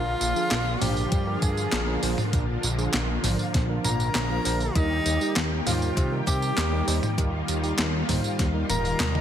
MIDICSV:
0, 0, Header, 1, 7, 480
1, 0, Start_track
1, 0, Tempo, 606061
1, 1847, Time_signature, 4, 2, 24, 8
1, 7294, End_track
2, 0, Start_track
2, 0, Title_t, "FM electric piano"
2, 0, Program_c, 0, 5
2, 0, Note_on_c, 0, 77, 99
2, 645, Note_on_c, 0, 79, 82
2, 646, Note_off_c, 0, 77, 0
2, 1126, Note_off_c, 0, 79, 0
2, 1126, Note_on_c, 0, 80, 97
2, 1750, Note_off_c, 0, 80, 0
2, 3047, Note_on_c, 0, 82, 96
2, 3766, Note_on_c, 0, 75, 107
2, 3767, Note_off_c, 0, 82, 0
2, 4391, Note_off_c, 0, 75, 0
2, 4487, Note_on_c, 0, 77, 89
2, 4901, Note_off_c, 0, 77, 0
2, 4969, Note_on_c, 0, 79, 97
2, 5592, Note_off_c, 0, 79, 0
2, 6889, Note_on_c, 0, 82, 95
2, 7294, Note_off_c, 0, 82, 0
2, 7294, End_track
3, 0, Start_track
3, 0, Title_t, "Tenor saxophone"
3, 0, Program_c, 1, 66
3, 0, Note_on_c, 1, 65, 111
3, 645, Note_on_c, 1, 67, 95
3, 657, Note_off_c, 1, 65, 0
3, 1126, Note_on_c, 1, 68, 99
3, 1137, Note_off_c, 1, 67, 0
3, 1750, Note_off_c, 1, 68, 0
3, 3044, Note_on_c, 1, 70, 103
3, 3765, Note_on_c, 1, 63, 110
3, 3777, Note_off_c, 1, 70, 0
3, 4390, Note_off_c, 1, 63, 0
3, 4487, Note_on_c, 1, 65, 91
3, 4901, Note_off_c, 1, 65, 0
3, 4966, Note_on_c, 1, 67, 106
3, 5591, Note_off_c, 1, 67, 0
3, 6886, Note_on_c, 1, 70, 103
3, 7294, Note_off_c, 1, 70, 0
3, 7294, End_track
4, 0, Start_track
4, 0, Title_t, "Tine electric piano"
4, 0, Program_c, 2, 4
4, 285, Note_on_c, 2, 53, 89
4, 285, Note_on_c, 2, 62, 77
4, 286, Note_on_c, 2, 68, 95
4, 424, Note_off_c, 2, 53, 0
4, 424, Note_off_c, 2, 62, 0
4, 425, Note_off_c, 2, 68, 0
4, 644, Note_on_c, 2, 53, 78
4, 645, Note_on_c, 2, 62, 73
4, 645, Note_on_c, 2, 72, 89
4, 977, Note_off_c, 2, 53, 0
4, 977, Note_off_c, 2, 62, 0
4, 977, Note_off_c, 2, 72, 0
4, 1005, Note_on_c, 2, 53, 76
4, 1005, Note_on_c, 2, 70, 81
4, 1006, Note_on_c, 2, 62, 72
4, 1458, Note_off_c, 2, 53, 0
4, 1458, Note_off_c, 2, 62, 0
4, 1458, Note_off_c, 2, 70, 0
4, 1485, Note_on_c, 2, 70, 100
4, 1486, Note_on_c, 2, 53, 88
4, 1486, Note_on_c, 2, 62, 82
4, 1578, Note_off_c, 2, 53, 0
4, 1578, Note_off_c, 2, 62, 0
4, 1578, Note_off_c, 2, 70, 0
4, 1606, Note_on_c, 2, 53, 92
4, 1606, Note_on_c, 2, 62, 81
4, 1606, Note_on_c, 2, 72, 99
4, 1745, Note_off_c, 2, 53, 0
4, 1745, Note_off_c, 2, 62, 0
4, 1745, Note_off_c, 2, 72, 0
4, 1845, Note_on_c, 2, 62, 78
4, 1845, Note_on_c, 2, 70, 89
4, 1846, Note_on_c, 2, 53, 86
4, 1933, Note_off_c, 2, 53, 0
4, 1933, Note_off_c, 2, 62, 0
4, 1933, Note_off_c, 2, 70, 0
4, 2205, Note_on_c, 2, 62, 82
4, 2205, Note_on_c, 2, 68, 99
4, 2206, Note_on_c, 2, 53, 90
4, 2344, Note_off_c, 2, 62, 0
4, 2344, Note_off_c, 2, 68, 0
4, 2345, Note_off_c, 2, 53, 0
4, 2566, Note_on_c, 2, 53, 75
4, 2566, Note_on_c, 2, 62, 74
4, 2567, Note_on_c, 2, 72, 91
4, 2898, Note_off_c, 2, 53, 0
4, 2898, Note_off_c, 2, 62, 0
4, 2898, Note_off_c, 2, 72, 0
4, 2926, Note_on_c, 2, 53, 75
4, 2926, Note_on_c, 2, 62, 68
4, 2926, Note_on_c, 2, 70, 85
4, 3378, Note_off_c, 2, 53, 0
4, 3378, Note_off_c, 2, 62, 0
4, 3378, Note_off_c, 2, 70, 0
4, 3405, Note_on_c, 2, 62, 82
4, 3406, Note_on_c, 2, 53, 92
4, 3406, Note_on_c, 2, 70, 99
4, 3498, Note_off_c, 2, 53, 0
4, 3498, Note_off_c, 2, 62, 0
4, 3498, Note_off_c, 2, 70, 0
4, 3526, Note_on_c, 2, 53, 94
4, 3526, Note_on_c, 2, 62, 83
4, 3527, Note_on_c, 2, 72, 102
4, 3665, Note_off_c, 2, 53, 0
4, 3665, Note_off_c, 2, 62, 0
4, 3665, Note_off_c, 2, 72, 0
4, 3766, Note_on_c, 2, 55, 81
4, 3766, Note_on_c, 2, 70, 88
4, 3767, Note_on_c, 2, 63, 79
4, 3853, Note_off_c, 2, 55, 0
4, 3853, Note_off_c, 2, 63, 0
4, 3853, Note_off_c, 2, 70, 0
4, 4126, Note_on_c, 2, 55, 90
4, 4126, Note_on_c, 2, 63, 83
4, 4126, Note_on_c, 2, 67, 98
4, 4265, Note_off_c, 2, 55, 0
4, 4265, Note_off_c, 2, 63, 0
4, 4265, Note_off_c, 2, 67, 0
4, 4485, Note_on_c, 2, 55, 78
4, 4485, Note_on_c, 2, 72, 85
4, 4486, Note_on_c, 2, 63, 75
4, 4817, Note_off_c, 2, 55, 0
4, 4817, Note_off_c, 2, 72, 0
4, 4818, Note_off_c, 2, 63, 0
4, 4845, Note_on_c, 2, 55, 74
4, 4846, Note_on_c, 2, 63, 69
4, 4846, Note_on_c, 2, 70, 82
4, 5298, Note_off_c, 2, 55, 0
4, 5298, Note_off_c, 2, 63, 0
4, 5298, Note_off_c, 2, 70, 0
4, 5325, Note_on_c, 2, 55, 91
4, 5325, Note_on_c, 2, 63, 80
4, 5325, Note_on_c, 2, 70, 99
4, 5417, Note_off_c, 2, 63, 0
4, 5418, Note_off_c, 2, 55, 0
4, 5418, Note_off_c, 2, 70, 0
4, 5445, Note_on_c, 2, 55, 93
4, 5445, Note_on_c, 2, 63, 83
4, 5445, Note_on_c, 2, 72, 102
4, 5584, Note_off_c, 2, 55, 0
4, 5584, Note_off_c, 2, 63, 0
4, 5584, Note_off_c, 2, 72, 0
4, 5686, Note_on_c, 2, 70, 91
4, 5687, Note_on_c, 2, 55, 86
4, 5687, Note_on_c, 2, 63, 76
4, 5773, Note_off_c, 2, 55, 0
4, 5773, Note_off_c, 2, 63, 0
4, 5773, Note_off_c, 2, 70, 0
4, 6047, Note_on_c, 2, 55, 91
4, 6047, Note_on_c, 2, 67, 99
4, 6048, Note_on_c, 2, 63, 82
4, 6185, Note_off_c, 2, 55, 0
4, 6185, Note_off_c, 2, 67, 0
4, 6186, Note_off_c, 2, 63, 0
4, 6405, Note_on_c, 2, 55, 80
4, 6405, Note_on_c, 2, 72, 89
4, 6406, Note_on_c, 2, 63, 71
4, 6738, Note_off_c, 2, 55, 0
4, 6738, Note_off_c, 2, 63, 0
4, 6738, Note_off_c, 2, 72, 0
4, 6765, Note_on_c, 2, 55, 73
4, 6765, Note_on_c, 2, 63, 72
4, 6765, Note_on_c, 2, 70, 81
4, 7217, Note_off_c, 2, 55, 0
4, 7217, Note_off_c, 2, 70, 0
4, 7218, Note_off_c, 2, 63, 0
4, 7245, Note_on_c, 2, 63, 73
4, 7246, Note_on_c, 2, 55, 80
4, 7246, Note_on_c, 2, 75, 81
4, 7294, Note_off_c, 2, 55, 0
4, 7294, Note_off_c, 2, 63, 0
4, 7294, Note_off_c, 2, 75, 0
4, 7294, End_track
5, 0, Start_track
5, 0, Title_t, "Analog synth pad"
5, 0, Program_c, 3, 89
5, 0, Note_on_c, 3, 50, 84
5, 0, Note_on_c, 3, 53, 83
5, 0, Note_on_c, 3, 58, 74
5, 0, Note_on_c, 3, 65, 91
5, 3736, Note_off_c, 3, 50, 0
5, 3736, Note_off_c, 3, 53, 0
5, 3736, Note_off_c, 3, 65, 0
5, 3768, Note_on_c, 3, 51, 86
5, 3768, Note_on_c, 3, 55, 76
5, 3768, Note_on_c, 3, 67, 94
5, 5668, Note_off_c, 3, 67, 0
5, 5687, Note_on_c, 3, 65, 96
5, 7294, Note_off_c, 3, 51, 0
5, 7294, Note_off_c, 3, 55, 0
5, 7294, Note_off_c, 3, 58, 0
5, 7294, Note_off_c, 3, 65, 0
5, 7294, End_track
6, 0, Start_track
6, 0, Title_t, "Analog synth bass"
6, 0, Program_c, 4, 38
6, 0, Note_on_c, 4, 34, 100
6, 121, Note_off_c, 4, 34, 0
6, 166, Note_on_c, 4, 34, 89
6, 264, Note_off_c, 4, 34, 0
6, 407, Note_on_c, 4, 34, 85
6, 602, Note_off_c, 4, 34, 0
6, 646, Note_on_c, 4, 34, 77
6, 842, Note_off_c, 4, 34, 0
6, 886, Note_on_c, 4, 43, 102
6, 1081, Note_off_c, 4, 43, 0
6, 1126, Note_on_c, 4, 43, 81
6, 1321, Note_off_c, 4, 43, 0
6, 1367, Note_on_c, 4, 34, 98
6, 1562, Note_off_c, 4, 34, 0
6, 1608, Note_on_c, 4, 34, 97
6, 1705, Note_off_c, 4, 34, 0
6, 1845, Note_on_c, 4, 34, 101
6, 2041, Note_off_c, 4, 34, 0
6, 2087, Note_on_c, 4, 34, 100
6, 2282, Note_off_c, 4, 34, 0
6, 2327, Note_on_c, 4, 34, 89
6, 2522, Note_off_c, 4, 34, 0
6, 2567, Note_on_c, 4, 34, 93
6, 2665, Note_off_c, 4, 34, 0
6, 2806, Note_on_c, 4, 34, 85
6, 3001, Note_off_c, 4, 34, 0
6, 3048, Note_on_c, 4, 34, 98
6, 3242, Note_off_c, 4, 34, 0
6, 3287, Note_on_c, 4, 34, 85
6, 3482, Note_off_c, 4, 34, 0
6, 3527, Note_on_c, 4, 34, 85
6, 3722, Note_off_c, 4, 34, 0
6, 3766, Note_on_c, 4, 39, 97
6, 3962, Note_off_c, 4, 39, 0
6, 4007, Note_on_c, 4, 39, 90
6, 4105, Note_off_c, 4, 39, 0
6, 4246, Note_on_c, 4, 39, 85
6, 4442, Note_off_c, 4, 39, 0
6, 4486, Note_on_c, 4, 39, 75
6, 4681, Note_off_c, 4, 39, 0
6, 4726, Note_on_c, 4, 48, 100
6, 4922, Note_off_c, 4, 48, 0
6, 4966, Note_on_c, 4, 48, 87
6, 5162, Note_off_c, 4, 48, 0
6, 5207, Note_on_c, 4, 39, 100
6, 5402, Note_off_c, 4, 39, 0
6, 5447, Note_on_c, 4, 39, 93
6, 5544, Note_off_c, 4, 39, 0
6, 5686, Note_on_c, 4, 39, 98
6, 5882, Note_off_c, 4, 39, 0
6, 5927, Note_on_c, 4, 39, 98
6, 6122, Note_off_c, 4, 39, 0
6, 6167, Note_on_c, 4, 39, 88
6, 6362, Note_off_c, 4, 39, 0
6, 6406, Note_on_c, 4, 39, 100
6, 6504, Note_off_c, 4, 39, 0
6, 6647, Note_on_c, 4, 39, 83
6, 6842, Note_off_c, 4, 39, 0
6, 6887, Note_on_c, 4, 27, 88
6, 7082, Note_off_c, 4, 27, 0
6, 7127, Note_on_c, 4, 39, 95
6, 7294, Note_off_c, 4, 39, 0
6, 7294, End_track
7, 0, Start_track
7, 0, Title_t, "Drums"
7, 166, Note_on_c, 9, 42, 69
7, 166, Note_on_c, 9, 54, 76
7, 245, Note_off_c, 9, 42, 0
7, 245, Note_off_c, 9, 54, 0
7, 287, Note_on_c, 9, 54, 41
7, 366, Note_off_c, 9, 54, 0
7, 406, Note_on_c, 9, 38, 113
7, 406, Note_on_c, 9, 39, 90
7, 406, Note_on_c, 9, 42, 86
7, 406, Note_on_c, 9, 54, 31
7, 485, Note_off_c, 9, 38, 0
7, 485, Note_off_c, 9, 39, 0
7, 485, Note_off_c, 9, 42, 0
7, 485, Note_off_c, 9, 54, 0
7, 646, Note_on_c, 9, 45, 97
7, 646, Note_on_c, 9, 46, 82
7, 646, Note_on_c, 9, 54, 75
7, 725, Note_off_c, 9, 45, 0
7, 725, Note_off_c, 9, 46, 0
7, 725, Note_off_c, 9, 54, 0
7, 765, Note_on_c, 9, 54, 42
7, 844, Note_off_c, 9, 54, 0
7, 886, Note_on_c, 9, 36, 126
7, 886, Note_on_c, 9, 42, 89
7, 886, Note_on_c, 9, 54, 33
7, 965, Note_off_c, 9, 36, 0
7, 965, Note_off_c, 9, 42, 0
7, 965, Note_off_c, 9, 54, 0
7, 1125, Note_on_c, 9, 42, 66
7, 1125, Note_on_c, 9, 54, 78
7, 1126, Note_on_c, 9, 36, 110
7, 1204, Note_off_c, 9, 42, 0
7, 1204, Note_off_c, 9, 54, 0
7, 1205, Note_off_c, 9, 36, 0
7, 1247, Note_on_c, 9, 54, 45
7, 1326, Note_off_c, 9, 54, 0
7, 1365, Note_on_c, 9, 38, 119
7, 1365, Note_on_c, 9, 39, 92
7, 1365, Note_on_c, 9, 42, 90
7, 1365, Note_on_c, 9, 54, 30
7, 1445, Note_off_c, 9, 38, 0
7, 1445, Note_off_c, 9, 39, 0
7, 1445, Note_off_c, 9, 42, 0
7, 1445, Note_off_c, 9, 54, 0
7, 1605, Note_on_c, 9, 46, 83
7, 1605, Note_on_c, 9, 54, 78
7, 1684, Note_off_c, 9, 46, 0
7, 1684, Note_off_c, 9, 54, 0
7, 1726, Note_on_c, 9, 45, 97
7, 1726, Note_on_c, 9, 54, 41
7, 1805, Note_off_c, 9, 45, 0
7, 1805, Note_off_c, 9, 54, 0
7, 1846, Note_on_c, 9, 36, 121
7, 1847, Note_on_c, 9, 42, 89
7, 1847, Note_on_c, 9, 54, 30
7, 1925, Note_off_c, 9, 36, 0
7, 1926, Note_off_c, 9, 42, 0
7, 1926, Note_off_c, 9, 54, 0
7, 2085, Note_on_c, 9, 42, 64
7, 2085, Note_on_c, 9, 54, 79
7, 2165, Note_off_c, 9, 42, 0
7, 2165, Note_off_c, 9, 54, 0
7, 2206, Note_on_c, 9, 54, 40
7, 2285, Note_off_c, 9, 54, 0
7, 2326, Note_on_c, 9, 38, 117
7, 2326, Note_on_c, 9, 39, 92
7, 2326, Note_on_c, 9, 42, 84
7, 2326, Note_on_c, 9, 54, 30
7, 2405, Note_off_c, 9, 38, 0
7, 2405, Note_off_c, 9, 39, 0
7, 2405, Note_off_c, 9, 42, 0
7, 2405, Note_off_c, 9, 54, 0
7, 2564, Note_on_c, 9, 45, 98
7, 2564, Note_on_c, 9, 46, 86
7, 2564, Note_on_c, 9, 54, 77
7, 2643, Note_off_c, 9, 45, 0
7, 2643, Note_off_c, 9, 46, 0
7, 2643, Note_off_c, 9, 54, 0
7, 2685, Note_on_c, 9, 54, 43
7, 2764, Note_off_c, 9, 54, 0
7, 2806, Note_on_c, 9, 36, 124
7, 2806, Note_on_c, 9, 38, 62
7, 2806, Note_on_c, 9, 42, 92
7, 2806, Note_on_c, 9, 54, 31
7, 2885, Note_off_c, 9, 36, 0
7, 2885, Note_off_c, 9, 38, 0
7, 2885, Note_off_c, 9, 42, 0
7, 2885, Note_off_c, 9, 54, 0
7, 3045, Note_on_c, 9, 42, 65
7, 3045, Note_on_c, 9, 45, 67
7, 3045, Note_on_c, 9, 54, 78
7, 3124, Note_off_c, 9, 42, 0
7, 3124, Note_off_c, 9, 45, 0
7, 3124, Note_off_c, 9, 54, 0
7, 3167, Note_on_c, 9, 54, 42
7, 3246, Note_off_c, 9, 54, 0
7, 3287, Note_on_c, 9, 38, 113
7, 3287, Note_on_c, 9, 39, 94
7, 3287, Note_on_c, 9, 42, 89
7, 3287, Note_on_c, 9, 54, 31
7, 3366, Note_off_c, 9, 38, 0
7, 3366, Note_off_c, 9, 39, 0
7, 3366, Note_off_c, 9, 42, 0
7, 3366, Note_off_c, 9, 54, 0
7, 3527, Note_on_c, 9, 46, 90
7, 3527, Note_on_c, 9, 54, 79
7, 3606, Note_off_c, 9, 46, 0
7, 3606, Note_off_c, 9, 54, 0
7, 3646, Note_on_c, 9, 54, 40
7, 3725, Note_off_c, 9, 54, 0
7, 3766, Note_on_c, 9, 36, 120
7, 3766, Note_on_c, 9, 42, 89
7, 3766, Note_on_c, 9, 54, 31
7, 3845, Note_off_c, 9, 36, 0
7, 3845, Note_off_c, 9, 42, 0
7, 3845, Note_off_c, 9, 54, 0
7, 4006, Note_on_c, 9, 42, 68
7, 4006, Note_on_c, 9, 54, 76
7, 4085, Note_off_c, 9, 42, 0
7, 4085, Note_off_c, 9, 54, 0
7, 4127, Note_on_c, 9, 54, 44
7, 4206, Note_off_c, 9, 54, 0
7, 4247, Note_on_c, 9, 38, 119
7, 4247, Note_on_c, 9, 39, 98
7, 4247, Note_on_c, 9, 42, 90
7, 4247, Note_on_c, 9, 54, 31
7, 4327, Note_off_c, 9, 38, 0
7, 4327, Note_off_c, 9, 39, 0
7, 4327, Note_off_c, 9, 42, 0
7, 4327, Note_off_c, 9, 54, 0
7, 4488, Note_on_c, 9, 45, 94
7, 4488, Note_on_c, 9, 46, 85
7, 4488, Note_on_c, 9, 54, 76
7, 4567, Note_off_c, 9, 45, 0
7, 4567, Note_off_c, 9, 46, 0
7, 4567, Note_off_c, 9, 54, 0
7, 4609, Note_on_c, 9, 54, 41
7, 4688, Note_off_c, 9, 54, 0
7, 4727, Note_on_c, 9, 36, 119
7, 4729, Note_on_c, 9, 42, 96
7, 4729, Note_on_c, 9, 54, 30
7, 4806, Note_off_c, 9, 36, 0
7, 4808, Note_off_c, 9, 42, 0
7, 4808, Note_off_c, 9, 54, 0
7, 4966, Note_on_c, 9, 36, 102
7, 4968, Note_on_c, 9, 42, 66
7, 4968, Note_on_c, 9, 54, 76
7, 5045, Note_off_c, 9, 36, 0
7, 5047, Note_off_c, 9, 42, 0
7, 5047, Note_off_c, 9, 54, 0
7, 5088, Note_on_c, 9, 54, 42
7, 5167, Note_off_c, 9, 54, 0
7, 5208, Note_on_c, 9, 38, 110
7, 5208, Note_on_c, 9, 39, 91
7, 5208, Note_on_c, 9, 42, 90
7, 5208, Note_on_c, 9, 54, 31
7, 5287, Note_off_c, 9, 38, 0
7, 5287, Note_off_c, 9, 39, 0
7, 5287, Note_off_c, 9, 42, 0
7, 5287, Note_off_c, 9, 54, 0
7, 5447, Note_on_c, 9, 46, 91
7, 5447, Note_on_c, 9, 54, 74
7, 5526, Note_off_c, 9, 46, 0
7, 5526, Note_off_c, 9, 54, 0
7, 5568, Note_on_c, 9, 45, 94
7, 5568, Note_on_c, 9, 54, 42
7, 5647, Note_off_c, 9, 45, 0
7, 5647, Note_off_c, 9, 54, 0
7, 5686, Note_on_c, 9, 36, 125
7, 5688, Note_on_c, 9, 42, 92
7, 5688, Note_on_c, 9, 54, 29
7, 5765, Note_off_c, 9, 36, 0
7, 5767, Note_off_c, 9, 42, 0
7, 5767, Note_off_c, 9, 54, 0
7, 5927, Note_on_c, 9, 42, 72
7, 5927, Note_on_c, 9, 54, 71
7, 6006, Note_off_c, 9, 42, 0
7, 6006, Note_off_c, 9, 54, 0
7, 6047, Note_on_c, 9, 54, 41
7, 6127, Note_off_c, 9, 54, 0
7, 6167, Note_on_c, 9, 38, 116
7, 6167, Note_on_c, 9, 39, 104
7, 6167, Note_on_c, 9, 42, 98
7, 6167, Note_on_c, 9, 54, 30
7, 6246, Note_off_c, 9, 38, 0
7, 6246, Note_off_c, 9, 39, 0
7, 6246, Note_off_c, 9, 42, 0
7, 6246, Note_off_c, 9, 54, 0
7, 6406, Note_on_c, 9, 36, 59
7, 6407, Note_on_c, 9, 45, 89
7, 6407, Note_on_c, 9, 46, 85
7, 6407, Note_on_c, 9, 54, 69
7, 6486, Note_off_c, 9, 36, 0
7, 6486, Note_off_c, 9, 45, 0
7, 6486, Note_off_c, 9, 46, 0
7, 6486, Note_off_c, 9, 54, 0
7, 6527, Note_on_c, 9, 54, 40
7, 6606, Note_off_c, 9, 54, 0
7, 6646, Note_on_c, 9, 36, 118
7, 6646, Note_on_c, 9, 38, 61
7, 6646, Note_on_c, 9, 42, 99
7, 6646, Note_on_c, 9, 54, 30
7, 6726, Note_off_c, 9, 36, 0
7, 6726, Note_off_c, 9, 38, 0
7, 6726, Note_off_c, 9, 42, 0
7, 6726, Note_off_c, 9, 54, 0
7, 6887, Note_on_c, 9, 42, 70
7, 6887, Note_on_c, 9, 45, 62
7, 6887, Note_on_c, 9, 48, 65
7, 6887, Note_on_c, 9, 54, 73
7, 6966, Note_off_c, 9, 42, 0
7, 6966, Note_off_c, 9, 45, 0
7, 6966, Note_off_c, 9, 48, 0
7, 6966, Note_off_c, 9, 54, 0
7, 7008, Note_on_c, 9, 54, 41
7, 7087, Note_off_c, 9, 54, 0
7, 7127, Note_on_c, 9, 38, 112
7, 7127, Note_on_c, 9, 39, 101
7, 7127, Note_on_c, 9, 42, 94
7, 7127, Note_on_c, 9, 47, 76
7, 7127, Note_on_c, 9, 54, 30
7, 7207, Note_off_c, 9, 38, 0
7, 7207, Note_off_c, 9, 39, 0
7, 7207, Note_off_c, 9, 42, 0
7, 7207, Note_off_c, 9, 47, 0
7, 7207, Note_off_c, 9, 54, 0
7, 7248, Note_on_c, 9, 47, 73
7, 7294, Note_off_c, 9, 47, 0
7, 7294, End_track
0, 0, End_of_file